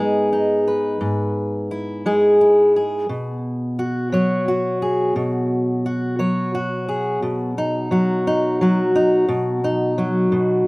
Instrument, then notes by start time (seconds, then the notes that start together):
steel-string acoustic guitar
Already playing: G#2 G#3 B3 D#4
0.00 G#4
0.33 D#4
0.68 B4
1.01 G#2
1.71 E4
2.06 G#3 G#4
2.41 E4
2.76 G#4
3.09 B2
3.79 F#4
4.12 F#3 C#5
4.48 F#4
4.82 G#4
5.16 B2
5.86 F#4
6.19 F#3 C#5
6.55 F#4
6.89 G#4
7.22 B2
7.58 D#4
7.91 F#3 F#4
8.27 D#4
8.61 F#3 F#4
8.96 D#4
9.29 B2
9.64 D#4
9.98 F#3 F#4
10.32 B2